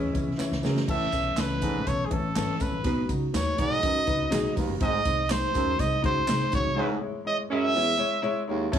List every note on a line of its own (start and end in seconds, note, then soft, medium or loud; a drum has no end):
0.00 0.11 D#2 medium
0.00 0.61 G#3 medium
0.00 0.60 C#4 medium
0.00 0.61 E4 medium
0.13 0.24 C#2 medium
0.13 0.31 E3 medium
0.13 0.31 C#4 medium
0.13 0.31 E4 medium
0.13 kick medium
0.13 closed hi-hat medium
0.13 tambourine soft
0.27 0.36 B1 medium
0.38 0.55 E3 medium
0.38 0.56 C#4 medium
0.38 0.56 E4 loud
0.38 muted upright bass stroke soft
0.38 snare medium
0.38 clap medium
0.38 tambourine medium
0.51 0.61 C#2 medium
0.51 snare medium
0.62 0.84 F#2 medium
0.62 0.82 C#3 medium
0.62 0.80 E3 medium
0.62 0.80 C#4 medium
0.62 0.80 G#4 medium
0.62 snare medium
0.62 tambourine soft
0.76 snare medium
0.88 1.06 A1 medium
0.88 1.09 A2 medium
0.88 1.05 E3 medium
0.88 1.05 C#4 medium
0.88 1.05 A4 loud
0.88 1.41 E5 loud
0.88 kick loud
0.88 crash medium
0.88 tambourine soft
1.12 1.30 B1 medium
1.12 1.29 E3 medium
1.12 1.29 C#4 medium
1.12 1.30 A4 medium
1.12 kick medium
1.12 closed hi-hat medium
1.12 tambourine medium
1.36 1.64 C#2 medium
1.36 1.54 E3 medium
1.36 1.54 C#4 medium
1.36 1.55 A4 medium
1.36 1.89 B4 medium
1.36 snare loud
1.36 clap medium
1.36 closed hi-hat medium
1.36 tambourine medium
1.61 1.82 G#2 medium
1.61 1.78 E3 medium
1.61 1.79 C#4 medium
1.61 1.79 A4 medium
1.61 kick medium
1.61 closed hi-hat medium
1.61 tambourine medium
1.74 1.83 A1 medium
1.84 2.05 B1 medium
1.84 2.02 E3 medium
1.84 2.03 C#4 medium
1.84 2.03 A4 medium
1.84 2.07 C#5 medium
1.84 kick medium
1.84 closed hi-hat medium
1.84 tambourine soft
2.06 2.14 G#4 medium
2.10 2.29 A1 medium
2.10 2.27 E3 loud
2.10 2.28 C#4 medium
2.10 2.28 A4 loud
2.10 2.63 A4 medium
2.10 kick medium
2.10 closed hi-hat medium
2.36 2.45 G#1 medium
2.36 2.52 E3 loud
2.36 2.52 C#4 medium
2.36 2.53 A4 loud
2.36 snare loud
2.36 clap loud
2.36 closed hi-hat medium
2.36 tambourine loud
2.60 2.69 G#1 medium
2.60 2.77 E3 medium
2.60 2.77 C#4 medium
2.60 2.78 A4 medium
2.60 3.10 B4 medium
2.60 kick medium
2.60 closed hi-hat medium
2.60 tambourine medium
2.72 2.81 A1 medium
2.83 3.03 B1 medium
2.83 3.05 B2 medium
2.83 3.01 F#3 medium
2.83 3.01 D#4 medium
2.83 3.01 B4 loud
2.83 kick loud
2.83 closed hi-hat medium
2.83 tambourine soft
3.07 3.27 C#2 medium
3.07 3.25 F#3 medium
3.07 3.25 D#4 medium
3.07 3.26 F#4 medium
3.07 kick medium
3.07 closed hi-hat medium
3.07 tambourine medium
3.32 3.52 D#2 medium
3.32 3.50 F#3 medium
3.32 3.50 D#4 medium
3.32 3.50 B4 medium
3.32 3.61 C#5 medium
3.32 snare medium
3.32 clap medium
3.32 closed hi-hat medium
3.32 tambourine medium
3.57 3.77 B1 medium
3.57 3.78 G#2 medium
3.57 3.74 F#3 medium
3.57 3.75 D#4 medium
3.57 3.75 B4 medium
3.57 4.57 D#5 loud
3.57 kick medium
3.57 snare soft
3.57 closed hi-hat medium
3.57 tambourine medium
3.81 4.02 F#2 medium
3.81 3.98 F#3 medium
3.81 3.99 D#4 medium
3.81 3.99 B4 medium
3.81 kick medium
3.81 closed hi-hat medium
3.81 tambourine soft
3.96 muted upright bass stroke soft
4.05 4.25 C#2 medium
4.05 4.23 F#3 medium
4.05 4.24 D#4 medium
4.05 4.24 B4 loud
4.05 kick medium
4.05 closed hi-hat medium
4.05 tambourine soft
4.30 4.41 B1 loud
4.30 4.47 F#3 loud
4.30 4.48 D#4 loud
4.30 4.48 G#4 loud
4.30 snare loud
4.30 clap loud
4.30 closed hi-hat medium
4.30 tambourine loud
4.55 4.66 E1 medium
4.55 4.76 D#2 medium
4.55 4.72 F#3 medium
4.55 4.73 D#4 medium
4.55 4.73 B4 loud
4.55 kick medium
4.55 open hi-hat medium
4.55 tambourine medium
4.69 4.78 F#1 medium
4.80 4.99 G#1 loud
4.80 5.01 G#2 medium
4.80 4.97 G#3 medium
4.80 4.97 D#4 medium
4.80 4.98 C5 loud
4.80 5.33 D#5 loud
4.80 kick loud
4.80 closed hi-hat medium
4.80 tambourine soft
5.04 5.41 C2 medium
5.04 5.21 G#3 medium
5.04 5.22 D#4 medium
5.04 5.22 C5 medium
5.04 kick medium
5.04 closed hi-hat medium
5.04 tambourine medium
5.29 5.46 G#3 medium
5.29 5.46 D#4 medium
5.29 5.47 C5 medium
5.29 5.81 C5 medium
5.29 snare loud
5.29 clap loud
5.29 closed hi-hat medium
5.29 tambourine loud
5.53 5.73 D#2 medium
5.53 5.74 F#2 medium
5.53 5.70 G#3 medium
5.53 5.71 D#4 medium
5.53 5.71 C5 medium
5.53 kick medium
5.53 snare soft
5.53 closed hi-hat medium
5.53 tambourine medium
5.78 5.97 C2 medium
5.78 5.95 G#3 medium
5.78 5.96 D#4 medium
5.78 5.96 C5 medium
5.78 6.04 D#5 medium
5.78 kick medium
5.78 closed hi-hat medium
5.78 tambourine medium
6.02 6.22 C#2 medium
6.02 6.19 G#3 loud
6.02 6.20 D#4 medium
6.02 6.20 F#4 loud
6.02 6.50 C5 medium
6.02 kick medium
6.02 closed hi-hat medium
6.27 6.37 C2 medium
6.27 6.44 G#3 loud
6.27 6.44 D#4 medium
6.27 6.45 C5 loud
6.27 snare loud
6.27 clap medium
6.27 closed hi-hat medium
6.27 tambourine loud
6.52 6.62 A1 medium
6.52 6.68 G#3 medium
6.52 6.69 D#4 medium
6.52 6.69 F#4 medium
6.52 6.99 C#5 medium
6.52 kick loud
6.52 closed hi-hat medium
6.52 tambourine medium
6.64 6.73 C2 medium
6.75 6.97 G#2 loud
6.75 6.92 G#3 loud
6.75 6.88 G#3 medium
6.75 6.88 C#4 medium
6.75 6.93 E4 medium
6.75 6.87 E4 medium
6.75 6.93 C#5 loud
7.00 7.17 G#3 medium
7.00 7.18 E4 medium
7.00 7.18 C#5 medium
7.25 7.42 G#3 medium
7.25 7.42 E4 medium
7.25 7.43 C#5 medium
7.25 7.37 D#5 medium
7.50 7.70 F#2 medium
7.50 7.67 G#3 medium
7.50 7.85 G#3 loud
7.50 7.85 C#4 medium
7.50 7.85 E4 loud
7.50 7.67 E4 medium
7.50 8.45 E5 loud
7.50 7.67 E5 medium
7.74 7.95 E2 medium
7.74 7.91 G#3 medium
7.74 7.91 E4 medium
7.74 7.92 C#5 medium
7.97 8.15 G#3 loud
7.97 8.15 E4 medium
7.97 8.16 C#5 loud
8.22 8.39 G#3 loud
8.22 8.40 E4 loud
8.22 8.40 C#5 loud
8.48 8.69 D#2 medium
8.48 8.64 G#3 medium
8.48 8.65 E4 medium
8.48 8.65 C#5 loud
8.72 8.79 A1 loud
8.72 8.79 A2 medium
8.72 8.79 A3 loud
8.72 8.79 C#4 loud
8.72 8.79 E4 loud
8.72 8.79 C#5 loud
8.72 kick loud
8.72 crash loud